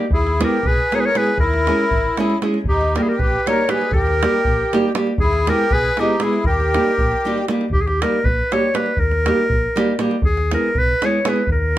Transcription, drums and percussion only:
0.11 davul low medium
0.27 davul high soft
0.41 davul high medium
0.65 davul low loud
0.92 davul high medium
1.15 davul high medium
1.27 davul high soft
1.38 davul low medium
1.53 davul high soft
1.67 davul high medium
1.81 davul high soft
1.91 davul low medium
2.17 davul high medium
2.30 davul high soft
2.42 davul high medium
2.54 davul high soft
2.65 davul low medium
2.81 davul high soft
2.96 davul high medium
3.20 davul low medium
3.47 davul high medium
3.69 davul high medium
3.81 davul high soft
3.92 davul low loud
4.07 davul high soft
4.23 davul high medium
4.45 davul low medium
4.73 davul high medium
4.95 davul high medium
5.07 davul high soft
5.18 davul low loud
5.33 davul high soft
5.47 davul high medium
5.71 davul low loud
5.97 davul high medium
6.20 davul high medium
6.33 davul high soft
6.44 davul low medium
6.60 davul high soft
6.74 davul high medium
6.98 davul low medium
7.12 davul high soft
7.37 davul high soft
7.48 davul high medium
7.61 davul high soft
7.73 davul low medium
7.87 davul high soft
8.02 davul high medium
8.25 davul low loud
8.52 davul high medium
8.75 davul high medium
8.86 davul high soft
8.97 davul low medium
9.11 davul high soft
9.26 davul high medium
9.50 davul low medium
9.77 davul high medium
9.99 davul high medium
10.11 davul high soft
10.22 davul low loud
10.37 davul high soft
10.51 davul high medium
10.75 davul low medium
11.02 davul high medium
11.25 davul high medium
11.36 davul high soft
11.47 davul low medium

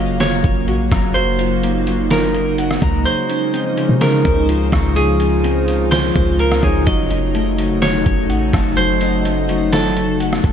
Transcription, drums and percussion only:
0.20 snare loud
0.20 closed hi-hat medium
0.44 kick loud
0.44 closed hi-hat medium
0.68 closed hi-hat medium
0.91 kick medium
0.91 cross-stick loud
0.91 closed hi-hat medium
1.16 closed hi-hat medium
1.39 closed hi-hat medium
1.63 closed hi-hat medium
1.87 closed hi-hat medium
2.11 snare loud
2.11 closed hi-hat medium
2.34 closed hi-hat medium
2.58 closed hi-hat medium
2.71 cross-stick loud
2.82 kick medium
2.82 closed hi-hat medium
3.06 closed hi-hat medium
3.29 closed hi-hat medium
3.54 closed hi-hat medium
3.78 closed hi-hat medium
4.01 snare loud
4.01 closed hi-hat medium
4.25 kick loud
4.25 closed hi-hat medium
4.49 closed hi-hat medium
4.72 kick medium
4.72 cross-stick loud
4.72 closed hi-hat medium
4.96 closed hi-hat medium
5.20 closed hi-hat medium
5.44 closed hi-hat medium
5.68 closed hi-hat medium
5.92 snare loud
5.92 closed hi-hat medium
6.15 kick loud
6.15 closed hi-hat medium
6.39 closed hi-hat medium
6.52 cross-stick loud
6.63 kick medium
6.63 closed hi-hat medium
6.87 kick loud
6.87 closed hi-hat medium
7.10 closed hi-hat medium
7.35 closed hi-hat medium
7.58 closed hi-hat medium
7.82 snare loud
7.82 closed hi-hat medium
8.06 kick medium
8.06 closed hi-hat medium
8.30 closed hi-hat medium
8.53 kick medium
8.53 cross-stick loud
8.53 closed hi-hat medium
8.77 closed hi-hat medium
9.01 closed hi-hat medium
9.25 closed hi-hat medium
9.49 closed hi-hat medium
9.73 snare loud
9.73 closed hi-hat medium
9.97 closed hi-hat medium
10.20 closed hi-hat medium
10.33 cross-stick medium
10.44 kick medium
10.44 closed hi-hat medium

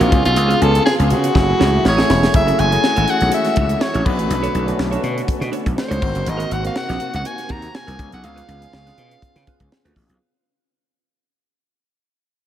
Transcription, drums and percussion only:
0.01 closed hi-hat medium
0.12 kick loud
0.12 closed hi-hat medium
0.25 closed hi-hat medium
0.36 closed hi-hat loud
0.51 closed hi-hat medium
0.62 closed hi-hat medium
0.75 closed hi-hat medium
0.87 snare loud
1.00 closed hi-hat medium
1.10 closed hi-hat medium
1.24 closed hi-hat medium
1.35 kick loud
1.35 snare medium
1.61 snare medium
1.85 snare medium
1.98 snare loud
2.10 snare loud
2.23 snare loud
2.34 kick loud
2.34 closed hi-hat loud
2.48 closed hi-hat medium
2.59 closed hi-hat medium
2.72 closed hi-hat medium
2.84 snare medium
2.96 closed hi-hat medium
3.08 closed hi-hat medium
3.21 closed hi-hat medium
3.32 closed hi-hat loud
3.45 snare soft
3.45 closed hi-hat soft
3.56 kick loud
3.56 closed hi-hat medium
3.69 closed hi-hat medium
3.81 snare loud
3.94 closed hi-hat soft
4.06 kick loud
4.06 crash medium
4.19 closed hi-hat medium
4.31 closed hi-hat loud
4.44 closed hi-hat medium
4.55 closed hi-hat medium
4.68 closed hi-hat medium
4.79 snare loud
4.93 closed hi-hat medium
5.04 closed hi-hat medium
5.18 closed hi-hat medium
5.28 kick loud
5.28 closed hi-hat loud
5.42 closed hi-hat medium
5.53 closed hi-hat medium
5.66 kick loud
5.66 closed hi-hat medium
5.78 snare loud
5.91 closed hi-hat medium
6.02 kick loud
6.02 crash medium
6.15 closed hi-hat medium
6.26 closed hi-hat loud
6.40 closed hi-hat medium
6.51 closed hi-hat medium
6.65 closed hi-hat medium
6.76 snare loud
6.89 snare soft
6.89 closed hi-hat soft
7.00 closed hi-hat medium
7.14 closed hi-hat medium
7.25 closed hi-hat loud
7.38 snare soft
7.38 closed hi-hat medium
7.49 kick medium
7.49 closed hi-hat medium
7.62 closed hi-hat medium
7.75 snare loud
7.88 closed hi-hat medium
7.99 kick loud
7.99 closed hi-hat medium
8.12 closed hi-hat medium
8.24 closed hi-hat loud
8.38 closed hi-hat medium
8.49 closed hi-hat medium
8.62 closed hi-hat medium
8.73 snare medium
8.87 snare soft
8.87 closed hi-hat soft
8.98 closed hi-hat medium
9.11 closed hi-hat medium
9.22 kick loud
9.22 closed hi-hat medium
9.36 snare soft
9.36 closed hi-hat medium
9.47 kick loud
9.47 closed hi-hat medium
9.60 kick medium
9.60 closed hi-hat medium
9.72 snare loud
9.85 closed hi-hat medium
9.96 kick medium
9.96 open hi-hat medium
10.10 closed hi-hat medium

